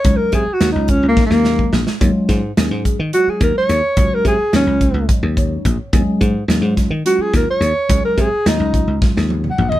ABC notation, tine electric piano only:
X:1
M:7/8
L:1/8
Q:1/4=107
K:Ebm
V:1 name="Tine electric piano"
z6 z | z6 z | z4 z d2 | z6 z |
z6 z |]
V:2 name="Tine electric piano"
[G,A,DE] z [G,A,DF] z [G,A,DE]2 z | [G,A,DF] z [G,A,DA] z [G,A,DF]2 z | [G,A,DG] z [G,A,DF] z [G,A,DE]2 z | [G,A,DA] z [G,A,DF] z [G,A,DF]2 z |
[G,A,DA] z [G,A,DF] z [G,A,DF]2 z |]